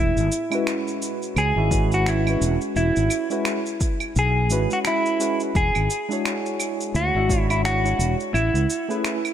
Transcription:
0.00 0.11 E1 medium
0.00 1.42 E4 medium
0.17 0.28 G#1 medium
0.17 shaker soft
0.32 shaker medium
0.50 1.51 G#3 medium
0.50 1.51 C#4 medium
0.50 1.52 E4 medium
0.50 1.52 F#4 medium
0.50 claves medium
0.50 shaker soft
0.55 1.53 B4 medium
0.67 finger snap loud
0.67 shaker soft
0.87 shaker soft
1.02 shaker medium
1.22 shaker soft
1.36 1.51 C#2 medium
1.36 1.94 G#4 medium
1.36 claves medium
1.36 shaker soft
1.56 2.34 G#1 medium
1.56 1.68 G#3 medium
1.56 1.68 C#4 medium
1.56 1.68 E4 medium
1.56 1.69 F#4 medium
1.56 1.69 E5 medium
1.71 2.21 G#3 medium
1.71 2.22 C#4 medium
1.71 2.22 E4 medium
1.71 2.22 F#4 medium
1.71 2.22 B4 loud
1.71 kick medium
1.71 shaker medium
1.92 2.08 F#4 medium
1.92 shaker soft
2.06 2.59 E4 medium
2.06 finger snap medium
2.06 shaker soft
2.26 3.26 G#3 medium
2.26 3.26 C#4 medium
2.26 3.27 E4 medium
2.26 3.27 F#4 medium
2.26 claves medium
2.26 shaker soft
2.30 3.28 B4 medium
2.41 2.56 E1 medium
2.41 shaker medium
2.61 shaker soft
2.76 2.91 E1 medium
2.76 4.12 E4 medium
2.76 shaker soft
2.96 3.07 G#1 medium
2.96 shaker soft
3.10 claves medium
3.10 shaker medium
3.30 3.59 G#3 medium
3.30 3.59 C#4 medium
3.30 3.59 E4 medium
3.30 3.60 F#4 medium
3.30 3.60 B4 medium
3.30 shaker soft
3.45 finger snap loud
3.45 shaker soft
3.66 shaker soft
3.80 kick loud
3.80 shaker medium
4.00 claves medium
4.00 shaker soft
4.16 4.51 B1 medium
4.16 4.73 G#4 medium
4.16 shaker soft
4.50 4.65 G#1 medium
4.50 5.17 G#3 medium
4.50 5.17 C#4 medium
4.50 5.17 E4 medium
4.50 5.17 F#4 medium
4.50 5.18 B4 medium
4.50 shaker medium
4.70 4.78 F#4 medium
4.70 shaker soft
4.85 5.41 E4 medium
4.85 finger snap loud
4.85 claves medium
4.85 shaker soft
5.06 shaker soft
5.20 5.50 G#3 medium
5.20 5.50 C#4 medium
5.20 5.50 E4 medium
5.20 5.51 F#4 medium
5.20 5.51 B4 medium
5.20 shaker medium
5.40 shaker soft
5.55 5.70 E1 medium
5.55 6.96 G#4 loud
5.55 kick loud
5.55 shaker soft
5.75 5.86 G#1 medium
5.75 claves medium
5.75 shaker soft
5.90 shaker medium
6.09 7.09 G#3 medium
6.09 7.09 D4 medium
6.09 7.10 E4 medium
6.09 7.11 F#4 medium
6.09 shaker soft
6.13 7.11 C#5 medium
6.25 finger snap loud
6.25 shaker soft
6.46 shaker soft
6.60 claves medium
6.60 shaker medium
6.81 shaker soft
6.94 7.09 D2 medium
6.94 7.40 F#4 medium
6.94 shaker soft
7.14 7.93 G#1 medium
7.14 7.26 G#3 medium
7.14 7.26 D4 medium
7.14 7.26 E4 medium
7.14 7.27 F#4 medium
7.14 7.27 E5 medium
7.29 7.79 G#3 medium
7.29 7.79 D4 medium
7.29 7.80 E4 medium
7.29 7.80 F#4 medium
7.29 7.80 C#5 medium
7.29 kick loud
7.29 shaker medium
7.40 7.50 E4 medium
7.50 7.65 E4 medium
7.50 claves medium
7.50 shaker soft
7.65 8.16 F#4 loud
7.65 finger snap medium
7.65 shaker soft
7.84 8.32 G#3 medium
7.84 8.32 D4 medium
7.84 8.33 E4 medium
7.84 8.33 F#4 medium
7.84 8.33 C#5 medium
7.84 shaker soft
7.99 8.14 E1 medium
7.99 shaker medium
8.20 shaker soft
8.34 8.49 A1 medium
8.34 9.34 E4 loud
8.34 claves medium
8.34 shaker soft
8.54 8.65 C#2 medium
8.54 shaker soft
8.70 shaker medium
8.88 9.17 A3 medium
8.88 9.17 C#4 medium
8.88 9.17 E4 medium
8.88 9.18 G#4 medium
8.88 9.18 B4 medium
8.88 shaker soft
9.04 finger snap loud
9.04 shaker soft
9.25 claves medium
9.25 shaker soft

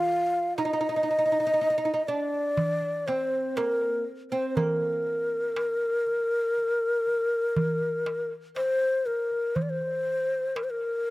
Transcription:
0.00 0.58 F4 medium
0.00 0.57 F5 loud
0.07 darbuka ka soft
0.57 0.64 D#4 medium
0.57 2.09 D#5 loud
0.57 darbuka tek medium
0.65 0.72 D#4 medium
0.73 0.79 D#4 medium
0.81 0.88 D#4 medium
0.89 0.95 D#4 medium
0.96 1.02 D#4 medium
1.03 1.09 D#4 medium
1.08 1.17 D#4 medium
1.08 darbuka ka soft
1.18 1.24 D#4 medium
1.26 1.31 D#4 soft
1.32 1.39 D#4 medium
1.32 darbuka ka soft
1.40 1.45 D#4 soft
1.47 1.52 D#4 medium
1.54 1.60 D#4 medium
1.61 1.69 D#4 medium
1.70 1.77 D#4 medium
1.78 1.84 D#4 medium
1.85 1.92 D#4 medium
1.94 2.01 D#4 medium
2.08 3.08 D4 medium
2.08 3.08 D5 medium
2.57 darbuka dum medium
3.07 3.59 C4 medium
3.07 3.58 C5 medium
3.07 darbuka tek medium
3.56 4.02 A#3 medium
3.56 4.05 A#4 medium
3.56 darbuka tek medium
4.31 4.58 C4 medium
4.31 4.48 C5 medium
4.31 darbuka ka soft
4.48 4.58 C5 medium
4.56 8.52 A#3 medium
4.56 8.31 A#4 loud
4.56 darbuka dum medium
5.07 darbuka ka soft
5.56 darbuka tek medium
6.07 darbuka ka soft
6.57 darbuka ka soft
7.07 darbuka ka soft
7.56 darbuka dum medium
8.06 darbuka tek medium
8.56 9.07 C5 loud
8.56 darbuka tek medium
9.06 9.57 A#4 medium
9.06 darbuka ka soft
9.32 darbuka ka soft
9.56 9.64 C5 medium
9.56 darbuka dum medium
9.62 9.71 D5 medium
9.70 10.57 C5 loud
10.07 darbuka ka soft
10.56 10.65 A#4 medium
10.56 darbuka tek medium
10.64 10.72 C5 medium
10.70 11.10 A#4 loud

